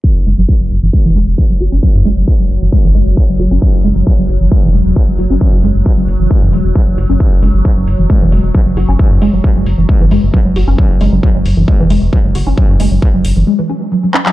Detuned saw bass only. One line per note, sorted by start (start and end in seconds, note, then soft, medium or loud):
0.15 0.23 F#1 medium
0.26 0.34 F#1 medium
0.38 0.45 F#1 medium
0.60 0.67 F#1 medium
0.71 0.79 F#1 medium
0.83 0.90 F#1 medium
1.05 1.12 E1 medium
1.16 1.24 E1 loud
1.27 1.35 E1 medium
1.50 1.57 F#1 medium
1.60 1.68 F#1 loud
1.72 1.79 F#1 medium
1.95 2.02 F#2 medium
2.05 2.13 F#1 medium
2.17 2.24 F#1 medium
2.39 2.47 F#1 medium
2.50 2.58 F#1 loud
2.62 2.69 F#1 medium
2.84 2.91 G#1 medium
2.95 3.03 F#1 loud
3.06 3.14 F#1 medium
3.29 3.36 F#1 medium
3.40 3.47 F#1 loud
3.51 3.58 F#1 medium
3.74 3.81 F#1 medium
3.84 3.92 F#1 loud
3.96 4.03 F#1 medium
4.18 4.26 F#1 medium
4.29 4.37 F#1 loud
4.41 4.48 F#1 medium
4.63 4.70 E1 medium
4.74 4.82 E1 loud
4.86 4.93 E1 medium
5.08 5.15 F#1 medium
5.19 5.26 F#1 loud
5.30 5.37 F#1 medium
5.53 5.60 F#2 medium
5.63 5.71 F#1 loud
5.75 5.82 F#1 medium
5.97 6.05 F#1 medium
6.08 6.16 F#1 loud
6.20 6.27 F#1 medium
6.42 6.49 F#2 medium
6.53 6.61 E1 loud
6.65 6.72 E1 medium
6.87 6.94 F#1 medium
6.98 7.06 F#1 medium
7.09 7.17 F#1 medium
7.32 7.39 F#1 medium
7.43 7.50 F#1 medium
7.54 7.61 F#1 medium
7.77 7.84 F#1 medium
7.87 7.95 F#1 medium
7.99 8.06 F#1 medium
8.21 8.29 E1 medium
8.32 8.40 E1 loud
8.44 8.51 E1 medium
8.66 8.73 F#1 medium
8.77 8.85 F#1 loud
8.89 8.96 F#1 medium
9.11 9.18 F#2 medium
9.22 9.29 F#1 medium
9.33 9.41 F#1 medium
9.56 9.63 F#1 medium
9.66 9.74 F#1 medium
9.78 9.85 F#1 medium
10.00 10.08 G#1 medium
10.11 10.19 F#1 loud
10.23 10.30 F#1 medium
10.45 10.52 F#1 medium
10.56 10.64 F#1 loud
10.68 10.75 F#1 medium
10.90 10.97 F#1 medium
11.01 11.09 F#1 loud
11.12 11.20 F#1 medium
11.35 11.42 F#1 medium
11.46 11.53 F#1 medium
11.57 11.64 F#1 medium
11.80 11.87 E1 medium
11.90 11.98 E1 loud
12.02 12.09 E1 medium
12.24 12.32 F#1 medium
12.35 12.43 F#1 loud
12.47 12.54 F#1 medium
12.69 12.76 F#2 medium
12.80 12.88 F#1 medium
12.91 12.99 F#1 medium
13.14 13.21 F#1 medium
13.25 13.32 F#1 medium
13.36 13.43 F#1 medium